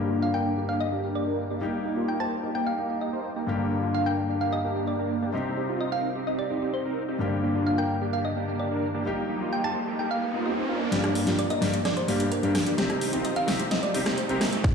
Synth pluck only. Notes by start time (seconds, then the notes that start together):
0.22 F5
0.34 G5
0.69 F5
0.81 D#5
1.15 D5
2.08 G5
2.20 A5
2.55 G5
2.67 F5
3.01 D#5
3.95 F5
4.06 G5
4.41 F5
4.53 D#5
4.87 D5
5.81 D#5
5.92 F5
6.27 D#5
6.39 D5
6.74 C5
7.67 F5
7.78 G5
8.13 F5
8.25 D#5
8.60 D5
9.53 G5
9.64 A5
9.99 G5
10.11 F5
10.46 D#5
11.39 D5
11.50 D#5
11.85 D5
11.97 C5
12.32 A#4
13.25 D#5
13.36 F5
13.71 D#5
13.83 D5
14.18 C5